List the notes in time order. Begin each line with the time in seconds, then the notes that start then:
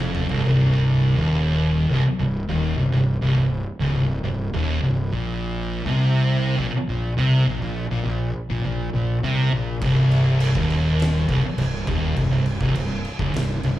Already playing: F1 F2
0.00 high tom
0.15 mid tom
0.29 C1 C2, floor tom
0.45 C1 C2
1.17 D#1 D#2
1.90 C1 C2
2.05 muted fingered electric bass stroke, muted distorted electric guitar stroke
2.19 C1 C2
2.49 D#1 D#2
2.78 C1 C2
2.92 C1 C2
3.21 C1 C2
3.36 C1 C2
3.80 C#1 C#2
3.94 C1 C2
4.23 C1 C2
4.53 D#1 D#2
4.82 C1 C2
5.12 A#1 A#2
5.85 C2 C3
6.59 A#1 A#2
6.74 muted distorted electric guitar stroke, muted fingered electric bass stroke
6.89 A#1 A#2
7.18 C2 C3
7.47 A#1 A#2
7.61 A#1 A#2
7.90 A#1 A#2
8.05 A#1 A#2
8.50 A#1 A#2
8.64 A#1 A#2
8.93 A#1 A#2
9.23 C2 C3
9.53 A#1 A#2
9.81 C1 C2, kick, crash
10.11 crash
10.40 crash
10.55 D#1 D#2, kick
10.70 crash
11.00 snare, crash
11.28 C1 C2, kick, crash
11.44 muted fingered electric bass stroke, muted distorted electric guitar stroke
11.57 C1 C2, crash
11.87 D#1 D#2, kick, crash
12.16 C1 C2, kick, crash
12.31 C1 C2
12.46 crash
12.61 C1 C2, kick
12.75 C1 C2, crash
13.05 crash
13.19 C#1 C#2, kick
13.34 C1 C2, snare, crash
13.63 C1 C2, crash